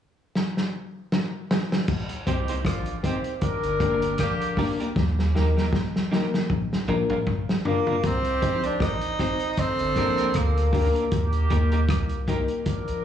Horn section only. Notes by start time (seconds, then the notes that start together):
2.27 D#3 C4 G4
2.65 F3 D4 F4
3.04 D#3 C4 G4
3.41 G3 D4 A#4
4.19 D3 A#3 G4
8.03 D#3 C4 G4
9.58 D3 A#3 A4
11.12 D#3 A#3 G4
12.67 F3 D4 A#4